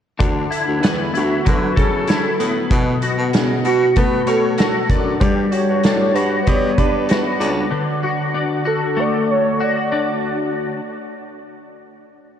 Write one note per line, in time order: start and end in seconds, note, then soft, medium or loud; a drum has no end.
0.19 0.45 D2 medium
0.19 3.69 D3 medium
0.19 kick loud
0.19 closed hi-hat medium
0.51 1.13 E4 medium
0.51 closed hi-hat medium
0.68 0.85 D2 medium
0.83 1.09 E2 medium
0.83 2.39 B3 medium
0.83 snare loud
0.83 closed hi-hat medium
1.14 1.40 D2 medium
1.14 2.07 E4 medium
1.14 1.45 F#4 medium
1.14 closed hi-hat medium
1.45 1.71 D3 medium
1.45 3.96 F#3 medium
1.45 1.80 B4 loud
1.45 kick medium
1.45 closed hi-hat medium
1.76 2.27 C#3 medium
1.76 4.27 A4 medium
1.76 2.08 A4 loud
1.76 kick medium
1.76 closed hi-hat medium
2.08 2.77 E4 medium
2.08 2.52 A4 medium
2.08 snare medium
2.08 closed hi-hat medium
2.40 2.65 A2 medium
2.40 3.99 B3 medium
2.40 closed hi-hat medium
2.71 2.96 B2 loud
2.71 5.22 B2 medium
2.71 kick loud
2.71 closed hi-hat medium
3.02 3.65 F#4 medium
3.02 closed hi-hat medium
3.18 3.30 B2 medium
3.33 3.58 C#3 medium
3.33 snare medium
3.33 closed hi-hat medium
3.64 3.89 B2 medium
3.64 4.58 F#4 medium
3.64 3.95 F#4 medium
3.64 closed hi-hat medium
3.96 5.28 A3 medium
3.96 4.21 B3 medium
3.96 4.29 B4 loud
3.96 kick medium
3.96 closed hi-hat medium
4.27 4.55 B2 medium
4.27 4.58 A4 medium
4.27 5.28 C#5 medium
4.27 closed hi-hat medium
4.58 5.51 F#4 medium
4.58 5.03 A4 medium
4.58 snare medium
4.58 closed hi-hat medium
4.90 5.15 F#2 medium
4.90 5.84 D4 medium
4.90 kick medium
4.90 closed hi-hat medium
5.20 5.46 G2 loud
5.20 7.72 G3 medium
5.20 5.34 D5 loud
5.20 kick loud
5.20 closed hi-hat medium
5.51 6.15 F#4 medium
5.51 6.15 C#5 loud
5.51 closed hi-hat medium
5.68 5.81 G2 medium
5.83 6.09 A2 medium
5.83 7.40 D4 medium
5.83 snare loud
5.83 closed hi-hat medium
6.14 6.40 G2 medium
6.14 7.09 F#4 medium
6.14 6.48 B4 medium
6.14 closed hi-hat medium
6.46 6.72 G3 medium
6.46 7.79 B3 medium
6.46 6.79 C#5 loud
6.46 kick medium
6.46 closed hi-hat medium
6.78 7.28 G2 medium
6.78 7.79 B4 medium
6.78 7.11 D5 loud
6.78 kick medium
6.78 closed hi-hat medium
7.09 8.03 F#4 medium
7.09 7.57 B4 medium
7.09 snare medium
7.09 closed hi-hat medium
7.40 7.66 C#2 medium
7.40 8.34 D4 medium
7.40 closed hi-hat medium
7.71 10.80 D3 medium
8.03 8.65 F#4 medium
8.34 9.92 D4 medium
8.65 9.60 F#4 medium
8.65 9.01 A4 medium
8.97 10.80 A3 medium
8.97 9.32 D5 loud
9.30 9.64 C#5 loud
9.61 10.80 F#4 medium
9.61 10.08 D5 medium
9.92 10.80 D4 medium